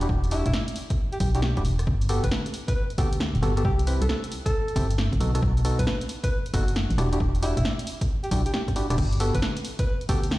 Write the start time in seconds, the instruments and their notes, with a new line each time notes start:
0.01 synth stab D4 E4 F#4 G4, closed hi-hat
0.09 fm bass E1, kick
0.24 closed hi-hat
0.31 synth stab D4 E4 F#4 G4, alto saxophone E4, open hi-hat
0.46 fm bass E1, alto saxophone E4, kick, cross-stick, closed hi-hat
0.54 snare
0.68 closed hi-hat
0.76 open hi-hat
0.90 kick, closed hi-hat
1.12 alto saxophone G4, closed hi-hat
1.20 fm bass B1, alto saxophone G4, kick, open hi-hat
1.35 synth stab D4 E4 F#4 G4, alto saxophone G4, closed hi-hat
1.42 alto saxophone G4, snare
1.57 fm bass D1, synth stab D4 E4 F#4 G4, kick, closed hi-hat
1.65 fm bass E1, open hi-hat
1.79 cross-stick, closed hi-hat
1.87 fm bass G1, kick
2.01 closed hi-hat
2.09 synth stab B3 F#4 G4 A4, open hi-hat
2.24 fm bass G1, alto saxophone B4, kick, cross-stick, closed hi-hat
2.31 alto saxophone B4, snare
2.46 closed hi-hat
2.54 open hi-hat
2.68 alto saxophone B4, kick, closed hi-hat
2.76 alto saxophone B4
2.90 closed hi-hat
2.98 fm bass D2, synth stab B3 F#4 G4 A4, alto saxophone G4, kick, open hi-hat
3.13 closed hi-hat
3.20 snare
3.35 fm bass D1, closed hi-hat
3.42 fm bass G1, synth stab B3 F#4 G4 A4, cross-stick, open hi-hat
3.57 synth stab B3 F#4 G4 A4, closed hi-hat
3.65 fm bass C2, alto saxophone G4, kick
3.79 closed hi-hat
3.87 synth stab C4 E4 G4 B4, open hi-hat
4.01 fm bass C2, alto saxophone A4, cross-stick, closed hi-hat
4.09 alto saxophone A4, snare
4.24 closed hi-hat
4.32 open hi-hat
4.46 alto saxophone A4, kick, closed hi-hat
4.68 closed hi-hat
4.76 fm bass G1, synth stab C4 E4 G4 A4, kick, open hi-hat
4.90 closed hi-hat
4.98 snare
5.12 fm bass G1, kick, closed hi-hat
5.20 fm bass B1, synth stab B3 D#4 F#4 A4, open hi-hat
5.35 synth stab B3 D#4 F#4 A4, cross-stick, closed hi-hat
5.42 fm bass B1, kick
5.57 closed hi-hat
5.65 synth stab B3 D#4 F#4 A4, open hi-hat
5.79 fm bass B1, alto saxophone B4, kick, cross-stick, closed hi-hat
5.87 alto saxophone B4, snare
6.01 closed hi-hat
6.09 open hi-hat
6.24 alto saxophone B4, kick, closed hi-hat
6.32 alto saxophone B4
6.46 closed hi-hat
6.53 fm bass F#1, synth stab B3 D#4 F#4 A4, alto saxophone F#4, kick, open hi-hat
6.68 closed hi-hat
6.76 snare
6.90 fm bass A1, closed hi-hat
6.98 fm bass E1, synth stab D4 E4 F#4 G4, cross-stick, open hi-hat
7.12 synth stab D4 E4 F#4 G4, closed hi-hat
7.20 fm bass E1, kick
7.35 closed hi-hat
7.42 synth stab D4 E4 F#4 G4, alto saxophone E4, open hi-hat
7.57 fm bass E1, alto saxophone E4, kick, cross-stick, closed hi-hat
7.65 snare
7.79 closed hi-hat
7.87 open hi-hat
8.01 kick, closed hi-hat
8.24 alto saxophone G4, closed hi-hat
8.31 fm bass B1, synth stab D4 E4 F#4 G4, alto saxophone G4, kick, open hi-hat
8.46 alto saxophone G4, closed hi-hat
8.53 alto saxophone G4, snare
8.68 kick, cross-stick, closed hi-hat
8.76 synth stab D4 E4 F#4 G4, open hi-hat
8.90 fm bass E1, synth stab D4 E4 F#4 G4, cross-stick, closed hi-hat
8.98 fm bass G1, kick, crash
9.12 closed hi-hat
9.20 synth stab B3 F#4 G4 A4, open hi-hat
9.35 fm bass G1, alto saxophone B4, kick, cross-stick, closed hi-hat
9.42 alto saxophone B4, snare
9.57 closed hi-hat
9.65 open hi-hat
9.79 alto saxophone B4, kick, closed hi-hat
9.87 alto saxophone B4
10.01 closed hi-hat
10.09 fm bass D2, synth stab B3 F#4 G4 A4, alto saxophone G4, kick, open hi-hat
10.23 closed hi-hat
10.31 snare